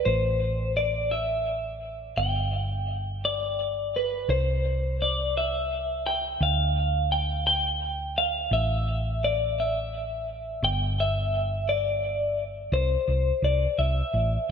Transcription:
0.05 A1 C5
0.77 D5
1.11 E5
2.17 G1 G5
3.25 D5
3.96 B4
4.29 C2 C5
5.02 D5
5.38 E5
6.07 G5
6.41 D2 F5
7.12 G5
7.47 G5
8.18 F5
8.51 A1 E5
9.24 D5
9.60 E5
10.63 G1 G5
11.00 E5
11.69 D5
12.72 C2 C5
13.08 C2
13.42 C2 D5
13.78 C2 E5
14.14 A1

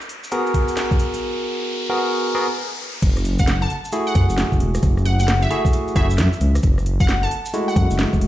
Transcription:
Already playing: riser
0.01 cabasa
0.09 open hi-hat
0.24 cabasa
0.32 B3 F#4 G#4 A#4, closed hi-hat, cabasa
0.47 cabasa
0.54 kick, open hi-hat
0.68 cabasa
0.77 snare, open hi-hat, cabasa
0.91 kick, cabasa
0.99 open hi-hat
1.14 closed hi-hat, cabasa
1.90 B3 F#4 G#4 A#4
2.35 B3 F#4 G#4 A#4
3.02 F#1, kick, closed hi-hat, crash, cabasa
3.16 cross-stick, cabasa
3.25 open hi-hat
3.39 F#5, kick, closed hi-hat, cabasa
3.48 snare, closed hi-hat, cabasa
3.62 A5, cabasa
3.70 open hi-hat
3.85 cabasa
3.92 A3 E4 F#4 G#4, closed hi-hat, cabasa
4.07 F#5, cabasa
4.15 F#2 F#5, kick, cross-stick, open hi-hat
4.30 F#1, cabasa
4.38 snare, open hi-hat, cabasa
4.52 F#1, kick, cabasa
4.60 E1, open hi-hat
4.75 cross-stick, closed hi-hat, cabasa
4.83 F#1, kick, closed hi-hat, cabasa
4.97 cross-stick, cabasa
5.05 F#5, open hi-hat
5.20 F#5, closed hi-hat, cabasa
5.28 snare, closed hi-hat, cabasa
5.42 E5, cabasa
5.50 A3 E4 F#4 G#4 E5, open hi-hat
5.65 kick, cabasa
5.73 closed hi-hat, cabasa
5.88 cabasa
5.96 F#1 A3 E4 F#4 G#4 E5, kick, cross-stick, open hi-hat
6.10 cabasa
6.18 F#2, snare, open hi-hat, cabasa
6.33 cabasa
6.41 C#2, open hi-hat
6.55 cross-stick, closed hi-hat, cabasa
6.63 F#1, kick, closed hi-hat, cabasa
6.78 cross-stick, cabasa
6.86 open hi-hat
7.00 F#5, kick, closed hi-hat, cabasa
7.09 snare, closed hi-hat, cabasa
7.23 A5, cabasa
7.31 open hi-hat
7.46 cabasa
7.54 G#3 A3 E4 F#4, closed hi-hat, cabasa
7.68 F#5, cabasa
7.76 F#2 F#5, kick, cross-stick, open hi-hat
7.91 F#1, cabasa
7.99 snare, open hi-hat, cabasa
8.13 F#1, kick, cabasa
8.21 E1, open hi-hat

